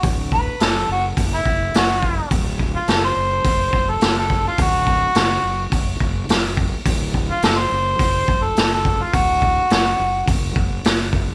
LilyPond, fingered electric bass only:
\new Staff \with { instrumentName = "Fingered electric bass" } { \clef bass \time 4/4 \key d \mixolydian \tempo 4 = 106 d,,4 fis,,8 fis,,8 fis,,8 fis,,8 fis,,4 | d,,4 fis,,8 fis,,8 fis,,8 fis,,8 fis,,4 | d,,4 fis,,8 fis,,8 fis,,8 fis,,8 fis,,4 | d,,4 fis,,8 fis,,8 fis,,8 fis,,8 fis,,4 |
d,,4 fis,,8 fis,,8 fis,,8 fis,,8 fis,,4 | }